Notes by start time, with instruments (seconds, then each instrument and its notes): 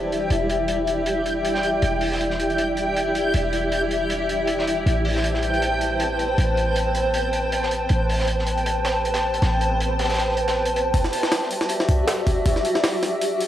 Already playing: 808-style bass E1, ambient pad E4 G4 D5 E5, synth texture G5
0.12 closed hi-hat
0.30 808-style bass E1, closed hi-hat
0.50 closed hi-hat
0.68 closed hi-hat
0.87 closed hi-hat
1.06 closed hi-hat
1.26 closed hi-hat
1.45 closed hi-hat
1.55 snare
1.63 closed hi-hat
1.82 808-style bass E1, ambient pad E4 G4 D5 E5, closed hi-hat
2.01 open hi-hat
2.12 snare
2.21 closed hi-hat
2.30 snare
2.40 closed hi-hat
2.50 closed hi-hat
2.58 closed hi-hat
2.77 closed hi-hat
2.96 closed hi-hat
3.15 closed hi-hat
3.34 808-style bass E1, closed hi-hat
3.53 closed hi-hat
3.72 closed hi-hat
3.91 closed hi-hat
4.10 closed hi-hat
4.29 closed hi-hat
4.47 closed hi-hat
4.59 snare
4.67 closed hi-hat
4.86 808-style bass A1, ambient pad B4 C5 G5 A5, closed hi-hat
5.05 open hi-hat
5.16 snare
5.24 closed hi-hat
5.34 snare
5.43 closed hi-hat
5.54 closed hi-hat
5.62 closed hi-hat
5.81 closed hi-hat
6.00 closed hi-hat
6.19 closed hi-hat
6.38 808-style bass A1, closed hi-hat
6.57 closed hi-hat
6.76 closed hi-hat
6.95 closed hi-hat
7.14 closed hi-hat
7.33 closed hi-hat
7.52 closed hi-hat
7.63 snare
7.71 closed hi-hat
7.89 808-style bass A1, ambient pad B4 C5 G5 A5, closed hi-hat
8.09 open hi-hat
8.20 snare
8.28 closed hi-hat
8.39 snare
8.47 closed hi-hat
8.57 closed hi-hat
8.66 closed hi-hat
8.85 snare, closed hi-hat
9.05 closed hi-hat
9.14 snare, closed hi-hat
9.34 closed hi-hat
9.42 808-style bass A1, snare, closed hi-hat
9.61 closed hi-hat
9.81 closed hi-hat
9.99 snare, closed hi-hat
10.04 snare, closed hi-hat
10.09 snare, closed hi-hat
10.14 snare, closed hi-hat
10.19 snare, closed hi-hat
10.29 snare
10.37 closed hi-hat
10.48 snare, closed hi-hat
10.56 snare
10.65 closed hi-hat
10.76 closed hi-hat
10.94 kick, closed hi-hat, open hi-hat
11.04 snare
11.13 open hi-hat
11.23 snare
11.32 snare, closed hi-hat, open hi-hat
11.43 snare
11.51 closed hi-hat, open hi-hat
11.61 snare, closed hi-hat
11.69 closed hi-hat, open hi-hat
11.80 snare
11.89 kick, closed hi-hat, open hi-hat
12.08 snare, closed hi-hat, open hi-hat
12.27 kick, closed hi-hat, open hi-hat
12.46 kick, closed hi-hat, open hi-hat
12.56 snare
12.65 closed hi-hat, open hi-hat
12.75 snare
12.84 snare, closed hi-hat, open hi-hat
13.03 snare, closed hi-hat, open hi-hat
13.21 closed hi-hat, open hi-hat
13.41 closed hi-hat, open hi-hat